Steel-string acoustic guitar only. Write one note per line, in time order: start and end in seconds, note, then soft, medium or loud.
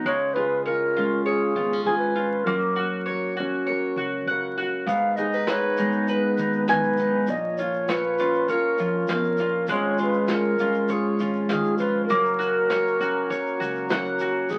0.06 1.87 C#3 medium
0.37 2.47 G#4 medium
0.67 1.26 F4 medium
0.97 2.44 G#3 medium
0.97 1.57 C#4 medium
1.27 1.87 F4 medium
1.58 1.73 B3 medium
1.73 2.17 C#4 soft
1.88 2.47 G#2 medium
1.88 2.44 F4 medium
2.19 2.44 C#4 soft
2.47 4.88 F#3 medium
2.47 3.37 C#4 medium
2.47 2.77 F#4 medium
2.78 3.38 F#4 medium
3.09 3.68 A#4 medium
3.39 4.85 C#4 medium
3.39 3.98 F#4 medium
3.69 4.28 A#4 medium
4.00 4.59 F#4 soft
4.30 4.89 C#3 medium
4.30 4.86 A#4 medium
4.61 4.86 F#4 soft
4.90 7.29 G#2 medium
5.18 5.34 G#4 medium
5.34 7.29 B4 medium
5.49 6.09 D#4 medium
5.79 7.25 G#3 medium
5.79 6.39 B3 medium
6.10 6.69 D#4 medium
6.40 7.00 B3 medium
6.70 7.26 D#3 medium
6.70 7.30 D#4 medium
7.01 7.30 B3 medium
7.29 9.10 A#2 medium
7.62 7.89 F4 medium
7.89 8.52 F4 medium
8.20 8.80 C#4 medium
8.52 9.67 F4 medium
8.80 9.70 C#4 soft
9.10 9.40 B2 medium
9.40 9.69 A#2 medium
9.69 12.10 G#2 medium
9.69 10.58 G#3 medium
9.69 10.60 C#4 medium
9.69 10.29 F4 medium
9.69 9.99 G#4 medium
10.00 12.11 G#4 medium
10.30 10.90 F4 medium
10.59 12.06 G#3 medium
10.59 11.18 C#4 medium
10.92 12.08 F4 medium
11.19 12.06 C#4 soft
11.51 11.78 D#3 medium
11.78 12.09 F3 medium
12.09 14.51 F#3 medium
12.40 12.70 F#4 medium
12.71 12.99 F#4 medium
13.00 14.47 C#4 medium
13.00 13.29 F#4 soft
13.30 13.60 F#4 soft
13.61 14.21 F#4 medium
13.92 14.51 C#3 medium
13.92 14.48 A#4 medium
14.23 14.48 F#4 medium
14.50 14.59 G#2 medium
14.50 14.59 B3 soft